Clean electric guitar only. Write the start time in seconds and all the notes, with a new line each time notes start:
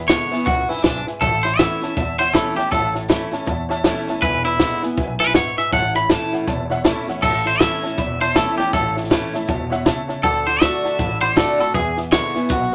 0.08 C#5
0.46 F#4
0.69 E4
0.82 D4
1.21 A4
1.43 C5
1.58 E5
2.19 C5
2.34 A4
2.56 G4
2.72 A4
4.22 B4
4.45 E4
5.20 B4
5.35 C#5
5.58 E5
5.73 F#5
5.96 B5
6.10 A5
7.22 A4
7.47 C5
7.60 E5
8.21 C5
8.36 A4
8.58 G4
8.73 A4
10.23 A4
10.47 C5
10.61 E5
11.21 C5
11.37 A4
11.61 A4
11.75 G#4
12.12 C#5
12.50 F#4